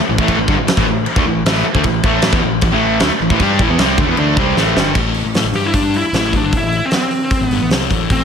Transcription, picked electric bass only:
0.01 muted picked electric bass stroke soft
0.09 0.18 A1 medium
0.19 0.36 A1 medium
0.37 0.47 A1 medium
0.48 0.57 G1 medium
0.58 0.67 A1 medium
0.69 muted picked electric bass stroke soft
0.77 0.86 A1 loud
0.87 1.05 A1 medium
1.16 1.25 D2 medium
1.26 1.44 A1 medium
1.45 1.64 A1 loud
1.65 muted picked electric bass stroke soft
1.75 1.83 D2 loud
1.84 2.03 A1 medium
2.03 2.31 A1 medium
2.33 2.42 E2 loud
2.44 2.62 A1 medium
2.62 2.72 A1 medium
2.72 3.00 A1 medium
3.02 3.10 D2 medium
3.10 muted picked electric bass stroke soft
3.20 3.30 A1 medium
3.30 3.39 A1 medium
3.40 3.58 G2 loud
3.59 3.68 A1 medium
3.68 3.78 E2 medium
3.80 3.97 C2 loud
3.98 4.06 D2 loud
4.07 4.15 E2 medium
4.16 4.35 D2 medium
4.36 4.55 C2 medium
4.56 4.75 A1 medium
4.75 4.94 G1 medium
4.95 5.23 A1 medium
5.25 5.34 A1 medium
5.35 5.43 A2 medium
5.44 5.52 A1 medium
5.52 5.99 G2 medium
6.03 muted picked electric bass stroke soft
6.13 6.41 A1 medium
6.42 6.52 G1 medium
6.53 6.60 A1 medium
6.61 6.80 A1 medium
7.41 7.48 A1 medium
7.49 7.57 G1 medium
7.58 7.68 A1 medium
7.69 7.88 C2 medium
7.91 8.09 A1 medium
8.10 8.24 A1 medium

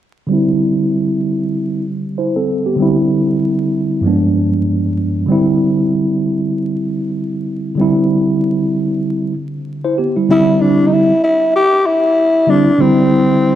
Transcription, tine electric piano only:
0.27 2.74 D3 medium
0.27 2.75 G3 medium
0.31 1.83 C4 medium
0.31 1.84 E4 medium
2.18 2.35 E4 soft
2.18 2.35 C5 medium
2.36 2.65 C4 medium
2.36 2.65 A4 medium
2.66 2.96 B3 soft
2.66 2.96 G4 medium
2.76 4.00 D3 medium
2.76 4.01 G3 medium
2.80 4.02 C4 medium
2.80 4.03 E4 medium
4.01 5.25 G2 medium
4.01 5.26 F3 medium
4.01 5.27 G#3 medium
4.06 5.28 B3 medium
4.06 5.28 D4 medium
5.26 7.74 D3 medium
5.26 7.75 G3 medium
5.26 7.76 C4 medium
5.32 7.77 E4 medium
7.75 10.23 D3 medium
7.75 9.32 G3 medium
7.79 9.32 C4 medium
7.79 9.33 E4 medium
9.84 9.97 E4 medium
9.84 9.97 C5 medium
9.98 10.16 B3 soft
9.98 10.15 G4 medium
10.16 10.29 G3 soft
10.16 10.30 E4 medium
10.29 11.10 D3 medium
10.29 11.11 G3 medium
10.29 11.11 C4 medium
10.29 11.12 E4 medium
12.47 12.69 D3 medium
12.47 12.70 G3 medium
12.47 12.70 C4 medium
12.47 12.71 E4 medium
12.78 13.55 D3 medium
12.78 13.55 G3 medium
12.78 13.55 C4 medium
12.78 13.55 E4 medium

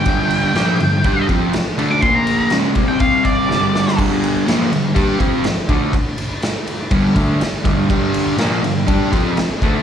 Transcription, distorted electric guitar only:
0.06 0.55 G2 loud
0.06 0.54 D3 loud
0.06 0.55 G3 medium
0.54 0.79 A#2 loud
0.54 0.79 F3 loud
0.54 0.79 A#3 loud
0.80 1.00 G2 medium
0.80 1.00 D3 medium
1.04 1.28 G3 medium
1.04 1.28 D4 loud
1.04 1.29 G4 loud
1.29 1.53 F3 loud
1.29 1.53 C4 loud
1.29 1.53 F4 loud
1.53 muted distorted electric guitar stroke medium
1.78 2.02 D3 loud
1.78 2.02 A3 loud
1.78 2.02 D4 loud
2.02 2.51 A#2 loud
2.02 2.51 F3 loud
2.02 2.51 A#3 loud
2.52 2.75 C#3 medium
2.52 2.76 G#3 loud
2.52 2.76 C#4 loud
2.75 3.48 C3 loud
2.75 3.48 G3 medium
2.75 3.49 C4 loud
3.48 3.97 G2 medium
3.48 3.97 D3 loud
3.48 3.97 G3 loud
3.98 4.46 G2 loud
3.98 4.46 D3 loud
3.98 4.47 G3 loud
4.46 4.71 A#2 loud
4.46 4.71 F3 loud
4.46 4.71 A#3 loud
4.70 4.91 G2 medium
4.70 4.91 D3 medium
4.94 5.19 G3 loud
4.94 5.19 D4 medium
4.94 5.20 G4 loud
5.19 5.44 F3 medium
5.19 5.44 C4 medium
5.19 5.44 F4 loud
5.45 muted distorted electric guitar stroke medium
5.69 5.93 D3 loud
5.69 5.94 A3 loud
5.69 5.94 D4 loud
6.91 7.15 G2 loud
6.91 7.14 D3 loud
6.91 7.15 G3 loud
7.15 7.40 D3 medium
7.15 7.40 A3 loud
7.15 7.40 D4 loud
7.40 muted distorted electric guitar stroke medium
7.64 7.87 G2 loud
7.64 7.89 D3 loud
7.64 7.89 G3 loud
7.88 8.38 G2 medium
7.88 8.37 D3 loud
7.88 8.38 G3 loud
8.38 8.62 A#2 loud
8.38 8.62 F3 loud
8.38 8.63 A#3 loud
8.63 8.83 G2 medium
8.63 8.83 D3 medium
8.87 9.11 G3 loud
8.87 9.12 D4 loud
8.87 9.12 G4 loud
9.12 9.36 F3 loud
9.12 9.37 C4 loud
9.12 9.37 F4 loud
9.38 muted distorted electric guitar stroke medium
9.62 9.82 D3 loud
9.62 9.82 A3 loud
9.62 9.82 D4 loud

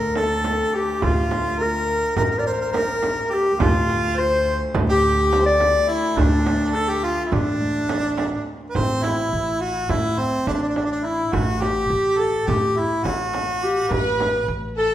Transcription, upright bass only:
0.00 0.59 D2 medium
1.03 2.02 D2 medium
2.16 3.16 A1 medium
3.60 4.60 D2 medium
4.74 5.74 D2 medium
6.17 7.17 D2 medium
7.32 8.32 A1 medium
8.76 9.26 A1 medium
9.33 9.83 A1 medium
9.90 10.40 A2 medium
10.47 11.22 A1 medium
11.33 11.83 A1 medium
11.90 12.40 A1 medium
12.48 12.98 A2 medium
13.05 13.80 A1 medium
13.91 14.41 A1 medium
14.48 14.94 A1 medium

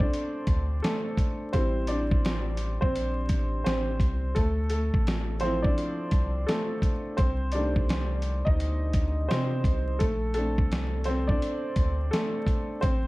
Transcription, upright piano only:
0.00 0.85 A3 medium
0.00 1.54 C4 medium
0.00 1.56 D4 medium
0.00 0.82 A4 medium
0.00 1.53 C5 medium
0.00 0.85 D5 medium
0.82 1.51 A3 medium
0.82 1.55 A4 medium
1.53 2.56 G3 medium
1.53 1.87 C4 medium
1.53 2.56 E4 medium
1.53 1.90 C5 medium
1.88 2.79 D4 medium
1.88 2.84 D5 medium
2.81 3.62 C4 medium
2.81 3.63 C5 medium
3.64 4.33 C4 medium
3.64 4.32 C5 medium
4.35 4.70 A3 medium
4.35 4.68 A4 medium
4.70 5.39 A3 medium
4.70 5.43 A4 medium
5.41 7.15 F3 medium
5.41 5.63 C4 medium
5.41 7.15 E4 medium
5.41 5.64 C5 loud
5.63 6.44 D4 medium
5.63 6.50 D5 medium
6.46 7.15 A3 medium
6.46 7.20 A4 medium
7.17 7.52 C4 medium
7.17 7.54 C5 medium
7.52 8.56 D#3 medium
7.52 8.56 G3 medium
7.52 8.56 A3 soft
7.52 8.43 D4 medium
7.52 8.42 D5 medium
8.45 9.27 D#4 medium
8.45 9.32 D#5 loud
9.29 9.97 C4 medium
9.29 10.02 C5 medium
9.99 10.34 A3 medium
9.99 10.33 A4 medium
10.34 11.03 A3 medium
10.34 10.87 C4 soft
10.34 10.87 D4 medium
10.34 11.08 A4 loud
11.05 11.28 C4 medium
11.05 11.29 C5 medium
11.27 12.09 D4 medium
11.27 12.08 D5 loud
12.11 12.80 A3 medium
12.11 12.84 A4 medium
12.81 13.07 C4 medium
12.81 13.07 C5 loud

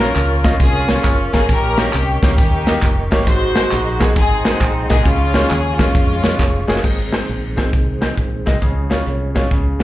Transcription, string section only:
0.00 0.56 C#4 medium
0.00 0.56 F4 medium
0.00 0.40 A#4 loud
0.60 1.46 C#4 medium
0.60 1.45 F4 medium
0.60 1.01 G#4 loud
1.33 1.48 G#4 loud
1.49 2.22 C#4 medium
1.49 1.92 G4 medium
1.49 1.94 A#4 loud
1.93 2.21 G4 loud
2.22 3.08 C#4 medium
2.22 3.08 D#4 medium
2.22 3.07 G4 medium
3.27 4.13 D#4 medium
3.27 4.13 F#4 medium
3.27 3.97 C5 loud
4.16 5.02 C4 medium
4.16 5.02 D#4 medium
4.16 4.58 G#4 loud
4.90 5.05 G#4 loud
5.06 5.78 G#3 medium
5.06 5.78 C#4 medium
5.06 5.50 F4 loud
5.50 5.79 G#4 loud
5.79 6.64 G#3 medium
5.79 6.64 C#4 medium
5.79 6.68 F4 medium

